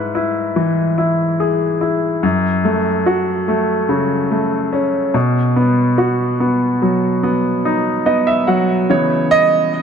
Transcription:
grand piano
Already playing: G#2 E4 B4
0.15 E4
0.56 E3
0.98 E4
1.40 G#4
1.81 E4
2.23 F#2
2.65 A3
3.06 F#4
3.48 A3
3.89 C#3
4.31 A3
4.73 C#4
5.14 B2
5.56 B3
5.98 F#4
6.40 B3
6.82 F#3
7.23 B3
7.65 D#4
8.06 B3 D#5
8.27 E5
8.47 F#3 F#5
8.89 C#3 E3 B3 C#5
9.31 D#5

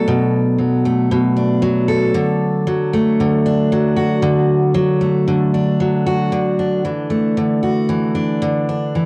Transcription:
steel-string acoustic guitar
Already playing: F#3 A3 D4 A4
0.08 B2
0.58 F#3
0.85 A3
1.11 B2
1.37 D4
1.62 F#3
1.88 A4
2.14 D3
2.67 F#3
2.93 A3
3.20 D3
3.46 D4
3.72 F#3
3.97 F#4
4.22 D3
4.75 F#3
5.01 A3
5.28 D3
5.54 D4
5.80 F#3
6.06 F#4
6.32 D3
6.59 D4
6.85 E3
7.10 A3
7.37 D3
7.63 F#4
7.89 E3
8.15 D4
8.42 D3
8.69 D4
8.95 E3

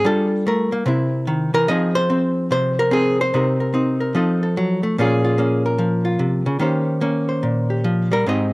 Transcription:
hollow-body jazz guitar
0.05 G3 D4 F4 A4
0.47 A3 A#4
0.72 A#3
0.86 C3 C4 E4
1.27 D#3
1.54 E3 A#4
1.68 F3 C4 D#4 G#4 D#5
1.95 C5
2.10 C4
2.51 C3 C5
2.79 A#4
2.91 C4 G#4
3.21 C5
3.34 C3 C4 D#4 A#4
3.60 A#4
3.74 C4 D#4
4.00 A#4
4.14 F3 C4 D#4 A4
4.43 A4
4.57 F#3
4.83 A3
4.98 A#2 A#3 C#4 F4 G#4
5.24 F4
5.38 A#3 C#4
5.66 A#4
5.79 F3
6.05 F4
6.19 C3
6.46 C#3
6.59 D#3 A#3 C#4 G4 C5
7.01 A#3 C#4
7.29 C5
7.43 A#2
7.70 G4
7.84 F3
8.12 G3 A#4
8.26 G#2 C4 D#4 G4 D#5

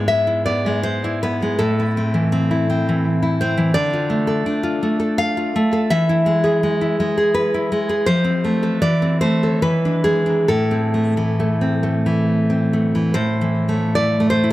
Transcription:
nylon-string guitar
Already playing: G#2 G#3
0.08 B3 E5
0.27 E4
0.46 B3 D5
0.66 G#3
0.83 C5
1.04 E4
1.23 B3 B4
1.42 G#3
1.59 A2 A4
1.80 E4
1.97 C4
2.14 E3
2.32 C4
2.51 E4
2.70 C4
2.89 E3
3.23 E4
3.41 C4 C5
3.58 E3
3.74 D3 D5
3.93 F4
4.10 A3
4.27 A4
4.46 D4
4.63 F4
4.83 A3
5.00 A4
5.18 F5
5.37 F4
5.56 A3
5.73 A4
5.90 E3 E5
6.09 E4
6.26 G#3
6.44 G#4
6.63 G#3
6.81 E4
7.00 G#3
7.18 G#4
7.34 B4
7.54 E4
7.72 G#3
7.89 G#4
8.06 F3 C5
8.24 C4
8.44 A3
8.63 A4
8.82 E3 D5
9.02 C4
9.21 A3 C5
9.43 A4
9.62 E3 B4
9.85 D4
10.04 G#3 G#4
10.26 D4
10.48 A2 A4
10.71 C4
10.94 A3
11.17 E3
11.40 A3
11.61 C4
11.83 A3
12.06 E3
12.50 C4
12.73 A3
12.95 E3
13.14 A2 C5
13.41 E3
13.69 A3
13.95 E4 D5
14.20 A3
14.30 C5
14.44 E4

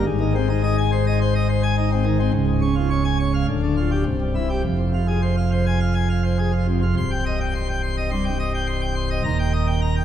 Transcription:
pipe organ
0.06 G#1 G#2
0.21 D#3
0.35 C4
0.49 D#4
0.63 D#5
0.78 G#5
0.92 C5
1.07 D#5
1.21 C5
1.35 D#5
1.49 C5
1.63 G#5
1.78 D#4
1.91 C4
2.05 D#3
2.19 C4
2.33 C#1 C#2
2.47 G#2
2.62 C#4
2.76 F4
2.90 C#5
3.05 G#5
3.19 C#5
3.34 F5
3.48 D1 D2
3.63 D3
3.77 F4
3.91 G4
4.06 C1 C2
4.21 G2
4.35 E4
4.49 G4
4.64 F1 F2
4.78 C3
4.94 F4
5.08 G#4
5.22 C5
5.37 F5
5.52 C5
5.66 G#5
5.80 F5
5.95 G#5
6.10 F5
6.24 C5
6.38 G#4
6.53 F4
6.68 C3
6.83 F4
6.97 C1 C2 C6
7.11 G5
7.26 D#5
7.40 G5
7.55 C6
7.68 G5
7.83 C6
7.97 D#5
8.11 G2 C6
8.24 G5
8.39 D#5
8.54 G5
8.67 C6
8.81 G5
8.96 C6
9.10 D#5
9.24 D#1 D#2 A#5
9.39 G5
9.53 D#5
9.67 G5
9.82 A#5
9.96 G5

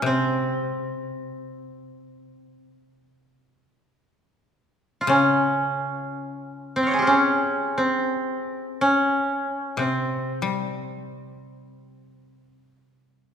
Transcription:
koto
Already playing: G#3 C#4
0.02 C3
0.06 C4
5.01 F4
5.07 C#3 C#4
6.76 C4 G5
6.83 C#5 F5
6.91 G#4 C5
6.99 F4 G4
7.07 C#4
7.78 C4
8.81 C#4
9.77 C3 C4
10.42 G3

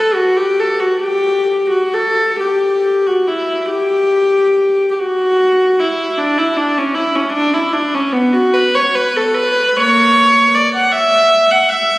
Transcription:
viola
Already playing: A4
0.14 F#4
0.37 G4
0.60 A4
0.80 F#4
1.00 G4
1.70 F#4
1.94 A4
2.40 G4
3.07 F#4
3.28 E4
3.69 G4
4.91 G4
4.98 F#4
5.79 E4
6.18 D4
6.39 E4
6.57 D4
6.78 C#4
6.95 E4
7.15 C#4
7.33 D4
7.54 E4
7.73 D4
7.94 C#4
8.13 B3
8.33 F#4
8.54 B4
8.75 C#5
8.95 B4
9.16 A4
9.35 B4
9.76 A#3 C#5
10.55 D5
10.75 F#5
10.92 E5
11.51 F#5
11.69 E5

